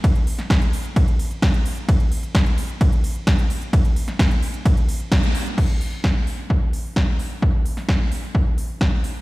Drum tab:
CC |----------------|----------------|----------------|x---------------|
RD |x---x---x---x---|x---x---x---x---|x---x---x---x---|----------------|
HH |xxoxxxoxxxoxxxox|xxoxxxoxxxoxxxox|xxoxxxoxxxoxxxox|--o---o---o---o-|
SD |---oo-------o---|----o-------o---|---oo-------o---|----o-------o---|
BD |o---o---o---o---|o---o---o---o---|o---o---o---o---|o---o---o---o---|

CC |----------------|
RD |----------------|
HH |--o---o---o---o-|
SD |---oo-------o---|
BD |o---o---o---o---|